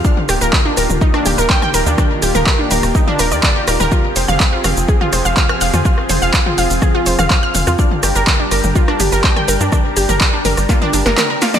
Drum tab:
HH |--o---o---o---o-|--o---oo--o---o-|--o---o---o---o-|--o---oo--o---o-|
SH |x-xxx-xxx-xxx-xx|x-xxx-xxx-xxx-xx|x-xxx-xxx-xxx-xx|x-xxx-xxx-xxx-xx|
CP |----x-------x---|----x-------x---|----x-------x---|----x-------x---|
SD |--r---r--r---r--|r---r--r---r--r-|---r--r---r--r--|-r--r---r--r---r|
T2 |-o--o--o--o--o--|o--o--o--o--o--o|o--o--o--o--o--o|--o--o--o--o--o-|
BD |o---o---o---o---|o---o---o---o---|o---o---o---o---|o---o---o---o---|

HH |--o---o---o---o-|--o---oo--o---o-|
SH |x-xxx-xxx-xxx-xx|x-xxx-xxx-xxx-xx|
CP |----x-------x---|----x-------x---|
SD |--r---r--r---r--|r---r--ro--oo-oo|
T2 |-o--o--o--o--o--|o--o--o--o--o--o|
BD |o---o---o---o---|o---o---o-------|